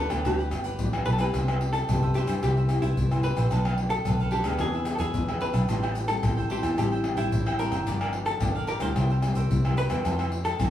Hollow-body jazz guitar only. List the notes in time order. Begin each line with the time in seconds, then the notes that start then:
Already playing: A4
0.26 G4
1.06 B4
1.13 A4
1.21 B4
1.73 A4
2.15 G4
2.43 G4
2.82 E4
3.24 B4
3.90 A4
4.32 G4
4.61 G#4
4.95 A4
5.00 G#4
5.42 B4
6.08 A4
6.51 G4
6.79 G4
7.18 E4
7.59 A#4
8.26 A4
8.68 A#4
8.82 C5
9.78 B4
10.45 A4